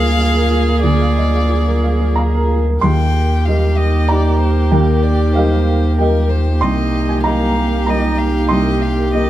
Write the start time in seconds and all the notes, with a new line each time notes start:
Already playing: D2 A#3 F4 G#4 A#4 D#5 F5
0.03 G#4
0.20 F5
0.35 A#4
0.51 G#4
0.68 A#4
0.83 D2 D5
1.01 F5
1.17 D#5
1.34 F5
1.50 G#4
1.66 A#4
1.84 F5
2.00 G#4
2.16 F5 A#5
2.34 A#4
2.51 G#4
2.68 A#4
2.81 D#2 A#3 D#4 G4 A#4 G5 C6
3.45 A#3 G4 D#5 F5
3.77 D#5
4.08 A#3 D#4 G4 D5 A#5
4.40 C5
4.72 D#2 A#4 G5
5.03 D5
5.33 A#3 G4 C5 D#5 F5
5.97 A#3 G4 A#4 D#5 G5
6.29 C5
6.60 C2 A#3 D#4 G4 A#4 D#5 C6
7.09 G#5
7.24 A#3 G4 D#5 F5 A#5
7.87 A#3 G4 D#5 A#5
8.18 F5
8.49 C2 D#5 C6
8.82 F5
9.14 A#3 G4 D#5